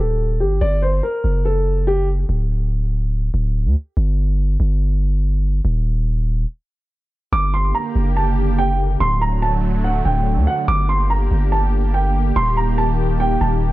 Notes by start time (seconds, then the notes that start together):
0.00 D#1 A4
0.40 G1 G4
0.61 G1 D5
0.82 C5
1.03 A#4
1.24 F#1
1.45 A4
1.87 G4
2.29 D1
3.34 D1
3.65 D2
3.97 G1
4.60 G1
5.65 D#1
7.33 G1 D3 A#3 G4 D6
7.54 C6
7.75 A#5
7.95 F#1
8.17 A5
8.59 G5
9.00 D1 F#3 A3 C6
9.21 A#5
9.42 A5
9.84 F#5
10.05 D1 G5
10.37 D2
10.47 F#5
10.68 G1 A#3 G4 D6
10.89 C6
11.10 A#5
11.31 G1
11.52 A5
11.94 G5
12.36 D#1 D#3 C6
12.57 A#5
12.78 A5
13.20 G5
13.41 D#1 A5